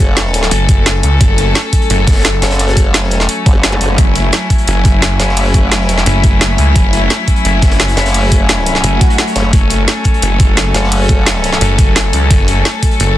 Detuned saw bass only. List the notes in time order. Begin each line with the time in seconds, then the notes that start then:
0.51 F#1
1.03 C#2
1.21 F#1
1.90 F#1
3.98 F#1
4.68 F#1
6.06 F#1
6.58 C#2
6.76 F#1
7.45 F#1
8.84 F#1
9.53 F#1
10.22 F#1
11.61 F#1
12.13 C#2
12.31 F#1
13.00 F#1